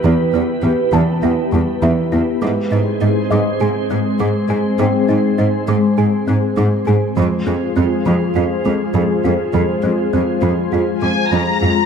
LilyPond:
<<
  \new Staff \with { instrumentName = "Violin section" } { \time 4/4 \key gis \phrygian \tempo 4 = 101 r1 | r1 | r1 | r1 |
r2 r8 aes''8 ais''4 | }
  \new Staff \with { instrumentName = "Felt piano" } { \time 4/4 \key gis \phrygian r4. a''4. <e' e''>4~ | <e' e''>4. dis''2~ dis''8 | <bis bis'>2. r4 | r2. aes'4~ |
aes'2 r2 | }
  \new Staff \with { instrumentName = "Ambient pad" } { \time 4/4 \key gis \phrygian <b e' g' b'>1 | <gis bis gis' bis'>1~ | <gis bis gis' bis'>1 | <aes f' aes' c''>1~ |
<aes f' aes' c''>1 | }
  \new Staff \with { instrumentName = "Synth pluck" } { \time 4/4 \key gis \phrygian e8 b8 b8 e8 e'8 g8 e8 e'8 | gis8 dis'8 dis'8 gis8 gis'8 bis8 gis8 gis'8 | gis8 dis'8 dis'8 gis8 gis'8 bis8 gis8 gis'8 | f8 c'8 c'8 f8 f'8 aes8 f8 f'8 |
f8 c'8 c'8 f8 f'8 aes8 f8 f'8 | }
  \new Staff \with { instrumentName = "Cello section" } { \clef bass \time 4/4 \key gis \phrygian e,8 e,8 e,8 e,8 e,8 e,8 e,8 e,8 | gis,8 gis,8 gis,8 gis,8 gis,8 gis,8 gis,8 gis,8 | gis,8 gis,8 gis,8 gis,8 gis,8 gis,8 gis,8 gis,8 | f,8 f,8 f,8 f,8 f,8 f,8 f,8 f,8 |
f,8 f,8 f,8 f,8 f,8 f,8 f,8 f,8 | }
>>